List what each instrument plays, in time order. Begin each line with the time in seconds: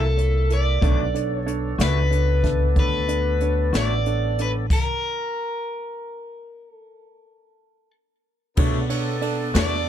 Already playing: upright bass C2, tonewheel organ A#3 A4 E5, overdriven electric guitar A4
0.17 grand piano E4 A4 C#5, closed hi-hat
0.49 grand piano E4 A4 A#4, closed hi-hat
0.53 overdriven electric guitar D5
0.81 upright bass B1, clean electric guitar B2 A3 D4 F#4, tonewheel organ B3 A4 D5, grand piano D4 A4 C#5, kick, closed hi-hat
1.14 grand piano D4 A4 C#5, closed hi-hat
1.34 overdriven electric guitar C#5
1.46 grand piano D4 A4 C#5, closed hi-hat
1.79 upright bass C#2, clean electric guitar B2 A3 D4 F#4, grand piano D4 A4 E5, snare, closed hi-hat
1.83 overdriven electric guitar B4
2.11 grand piano D4 A4 C#5, closed hi-hat
2.43 grand piano D4 A4 E5, kick, snare, closed hi-hat
2.76 upright bass D2, grand piano D4 A4 C#5, overdriven electric guitar B4, kick, closed hi-hat
3.08 grand piano D4 A4 D5, closed hi-hat
3.40 grand piano D4 A4 C#5, closed hi-hat
3.73 upright bass A1, clean electric guitar B2 A3 D4 F#4, grand piano D4 A4 C#5, snare, closed hi-hat
3.77 overdriven electric guitar D5
4.06 grand piano D4 A4 C#5, closed hi-hat
4.38 grand piano D4 A4 C#5, overdriven electric guitar B4, closed hi-hat
4.70 overdriven electric guitar A#4, kick, crash
6.70 overdriven electric guitar A4
8.57 clean electric guitar B2 A3 D4 F#4, upright bass B2, horn section B3 D4 A4, tonewheel organ B3 A4 D5, grand piano D4 A4 C#5, kick, crash
8.89 grand piano D4 A4 C#5, ride
9.21 grand piano D4 A4 D5, ride
9.54 upright bass E2, clean electric guitar B2 A3 D4 F#4, grand piano D4 A4 B4, snare, ride
9.59 overdriven electric guitar D5